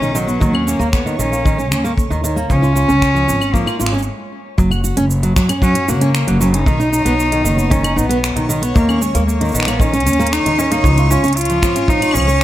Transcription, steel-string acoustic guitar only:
0.02 D#3
0.15 D#3
0.27 B3
0.40 D#3
0.53 C#4
0.67 C#4
0.79 A#3
1.06 D#3
1.19 D#3
1.32 A#3
1.45 D#3
1.58 C#4
1.71 C#4
1.84 A#3
2.10 D#3
2.24 D#3
2.36 A#3
2.50 F3
2.62 F4
2.75 F4
2.88 C#4
3.15 F3
3.28 F3
3.40 C#4
3.54 F3
3.66 F4
3.79 F4
3.93 C#4
4.58 F#3
4.71 F#4
4.84 F#4
4.97 C#4
5.23 F#3
5.36 F#3
5.49 C#4
5.62 F#3
5.88 F#4
6.01 C#4
6.27 F#3
6.41 F#3
6.54 C#4
6.67 D#3
6.80 D#4
6.92 D#4
7.05 B3
7.32 D#3
7.45 D#3
7.57 B3
7.70 D#3
7.83 D#4
7.96 D#4
8.09 B3
8.36 D#3
8.49 D#3
8.62 B3
8.75 D#3
8.88 C#4
9.01 C#4
9.15 A#3
9.41 D#3
9.54 D#3
9.67 A#3
9.80 D#3
9.93 C#4
10.06 C#4
10.19 A#3
10.46 D#3
10.59 D#3
10.72 A#3
10.85 F3
10.98 F4
11.10 F4
11.23 C#4
11.49 F3
11.62 F3
11.75 C#4
11.88 F3
12.01 F4
12.14 F3
12.27 C#5

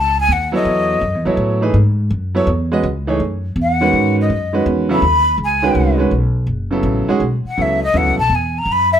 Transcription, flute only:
Already playing: A5
0.20 G#5
0.32 F#5
0.54 D#5
3.61 F#5
4.21 D#5
4.92 B5
5.44 G#5
7.47 F#5
7.61 E5
7.83 D#5
7.97 F#5
8.18 A5
8.34 G#5
8.58 A#5
8.71 B5
8.92 E5

